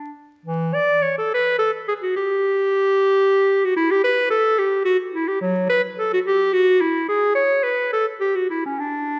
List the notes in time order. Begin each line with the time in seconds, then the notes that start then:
Already playing: D4
0.45 E3
0.74 D5
1.02 C#5
1.18 A4
1.34 B4
1.59 A4
1.88 G#4
2.02 F#4
2.16 G4
3.65 F#4
3.76 E4
3.91 G4
4.04 B4
4.30 A4
4.58 G4
4.85 F#4
5.14 E4
5.28 G4
5.41 F#3
5.69 B4
5.98 A4
6.13 F#4
6.25 G4
6.53 F#4
6.81 E4
7.08 G#4
7.35 C#5
7.63 B4
7.93 A4
8.20 G4
8.36 F#4
8.49 E4
8.65 C#4
8.79 D4